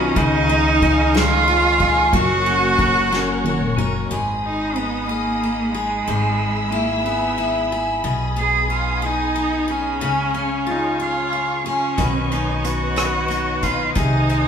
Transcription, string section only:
Already playing: B4 D#5 A#5 D#6
0.15 G#4 F5 C#6
2.14 A#4 C#5 F#5
4.11 G#4 D#5 B5 D#6
6.06 G#4 E5 E6
8.04 G#4 G#5 D#6
10.01 C#5 F5 C#6
11.96 B4 C#5 D#5
13.96 C5 G#5 D#6

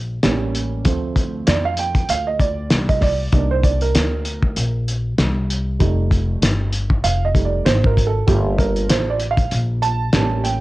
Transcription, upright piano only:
0.23 G3 A#3 C#4
0.85 F3 A3 C4
1.47 D5
1.65 F5
1.79 G5
2.10 F5
2.27 D#5
2.40 D5
2.89 D#5
3.02 D5
3.33 A#3 D4 D#4
3.51 C5
3.64 D5
3.82 A#4
5.79 G3 A3 D#4
7.04 F5
7.25 D#5
7.34 G3 A3 D#4
7.45 D5
7.65 C5
7.86 A#4
8.07 A4
8.27 A#3 F4 G4 A4
8.58 A#4
8.89 C5
9.10 D5
9.31 F5
9.82 A5
10.13 G3 A#3 C#4
10.44 G5

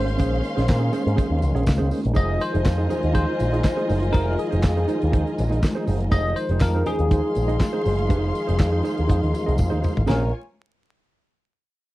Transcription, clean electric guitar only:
0.07 muted clean electric guitar stroke
0.18 C#4 G#4 C5
0.43 muted clean electric guitar stroke
0.56 C#4 G#4 C5
0.68 muted clean electric guitar stroke
0.79 C#4 G#4 C5
0.92 C#4 G#4 C5
1.04 muted clean electric guitar stroke
1.16 C#4 G#4 C5
1.29 muted clean electric guitar stroke
1.40 muted clean electric guitar stroke
1.55 C#4 G#4 C#5
1.78 C#4 G#4 C5
1.90 C#4 G#4 C5
2.02 muted clean electric guitar stroke
2.14 D#4 G#4 C5
2.39 muted clean electric guitar stroke
2.53 D#4 G#4 C5
2.64 muted clean electric guitar stroke
2.78 D#4 G#4 C5
2.89 D#4 G#4 C5
3.02 muted clean electric guitar stroke
3.13 D#4 G#4 C5
3.27 muted clean electric guitar stroke
3.40 muted clean electric guitar stroke
3.53 D#4 G#4 D#5
3.64 muted clean electric guitar stroke
3.76 D#4 G#4 C5
3.88 D#4 G#4 C5
4.01 muted clean electric guitar stroke
4.12 D#4 G#4 C5
4.38 muted clean electric guitar stroke
4.51 D#4 G#4 C5
4.63 muted clean electric guitar stroke
4.77 D#4 G#4 C5
4.88 D#4 G#4 C5
5.02 muted clean electric guitar stroke
5.12 D#4 G#4 C5
5.26 muted clean electric guitar stroke
5.37 muted clean electric guitar stroke
5.50 D#4 G#4 D#5
5.63 muted clean electric guitar stroke
5.75 D#4 G#4 C5
5.86 D#4 G#4 C5
6.01 muted clean electric guitar stroke
6.11 D#4 G#4 C5
6.37 muted clean electric guitar stroke
6.51 D#4 G#4 C5
6.63 muted clean electric guitar stroke
6.75 D#4 G#4 C5
6.86 D#4 G#4 C5
7.00 muted clean electric guitar stroke
7.11 D#4 G#4 C5
7.24 muted clean electric guitar stroke
7.36 muted clean electric guitar stroke
7.48 D#4 G#4 D#5
7.73 D#4 G#4 C5
7.85 D#4 G#4 C5
7.98 muted clean electric guitar stroke
8.09 D#4 G#4 C5
8.35 muted clean electric guitar stroke
8.47 D#4 G#4 C5
8.58 muted clean electric guitar stroke
8.72 D#4 G#4 C5
8.83 D#4 G#4 C5
8.98 muted clean electric guitar stroke
9.07 D#4 G#4 C5
9.22 muted clean electric guitar stroke
9.33 muted clean electric guitar stroke
9.46 D#4 G#4 D#5
9.57 muted clean electric guitar stroke
9.70 D#4 G#4 C5
9.81 D#4 G#4 C5
9.95 muted clean electric guitar stroke
10.06 C#4 G#4 C5

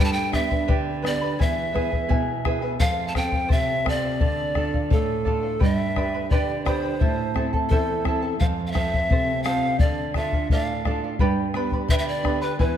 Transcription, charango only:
Already playing: G4 B4 D5 G5
0.00 B5
0.33 B4 D5 G5 B5
0.50 B4 D5 B5
0.68 G4 B4 D5 G5 B5
1.02 B4 D5 G5 B5
1.21 B4 D5 B5
1.39 E4 G#4 B4 E5 G#5
1.73 E4 B4 E5 G#5
1.91 E4 B4 G#5
2.08 E4 G#4 B4 E5 G#5
2.45 E4 B4 E5 G#5
2.62 E4 B4 G#5
2.79 A4 C5 F5
3.14 A4 C5 F5
3.32 C5 F5
3.49 A4 C5
3.84 A4 C5 F5
4.01 C5 F5
4.20 A4 D5 F5
4.55 A4 D5 F5
4.74 D5 F5
4.91 A4 D5 F5
5.25 A4 D5 F5
5.43 D5 F5
5.59 G4 B4 D5 G5 B5
5.96 B4 D5 G5 B5
6.14 B4 D5 B5
6.31 G4 B4 D5 G5 B5
6.65 B4 D5 G5 B5
6.82 B4 D5 B5
7.00 E4 A4 C5 E5 A5
7.36 E4 A4 E5 A5
7.53 E4 A4 A5
7.71 E4 A4 C5 E5 A5
8.06 E4 A4 E5 A5
8.22 E4 A4 A5
8.41 A4 C5 F5
8.75 A4 C5 F5
8.94 C5 F5
9.11 A4 C5
9.47 A4 C5 F5
9.66 C5 F5
9.83 A4 D5 F5
10.17 A4 D5 F5
10.34 D5 F5
10.52 A4 D5 F5
10.85 A4 D5 F5
11.04 D5 F5
11.20 G4 B4 D5 G5 B5
11.54 B4 D5 G5 B5
11.73 B4 D5 B5
11.90 G4 B4 D5 G5 B5
12.24 B4 D5 G5 B5
12.41 B4 D5 B5
12.59 E4 G#4 B4 E5 G#5

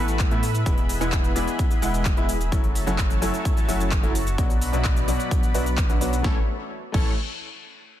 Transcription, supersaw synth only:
Already playing: A3 B3 E4 B4 F#5
0.31 A3 B3 E4 B4 E5
0.66 G#3 B3 E4 B4 E5
1.01 G#3 B3 E4 B4 F#5
1.36 G#3 B3 E4 B4 D5
1.82 G#3 B3 E4 B4 F#5
2.17 G#3 B3 E4 B4 E5
2.52 F#3 C#4 E4 A4 E5
2.87 F#3 C#4 E4 A4 F#5
3.22 F#3 C#4 E4 A4 C#5
3.68 F#3 C#4 E4 A4 F#5
4.03 F#3 C#4 E4 A4 E5
4.38 F#3 B3 D4 B4 D5
4.73 F#3 B3 D4 B4 E5
5.08 F#3 B3 D4 B4 C#5
5.55 F#3 B3 D4 B4 E5
5.89 F#3 B3 D4 B4 E5
6.01 F#3 B3 D4 B4 C#5
6.24 E3 A3 C#4 A4 C#5
6.94 E3 A3 C#4 A4 C#5

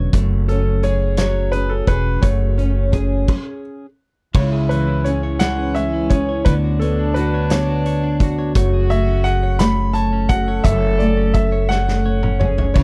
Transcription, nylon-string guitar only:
Already playing: D3 F#3 B3 C#4
0.15 F#2
0.50 C#4
0.84 G#4
1.20 F#3
1.54 C#4
1.88 G#4
2.23 F#2
2.58 C#4
2.92 G#4
4.35 C#3
4.70 E3
5.06 C#4
5.40 E3
5.75 G#3
6.11 C#4
6.46 D3
6.81 B3
7.16 F#4
7.51 B3
8.21 F#4
8.56 F#2
8.91 A3
9.61 A3
10.30 F#4
10.64 F#2
11.00 A3
11.70 A3
12.06 C#4
12.41 G#4
12.76 C#3

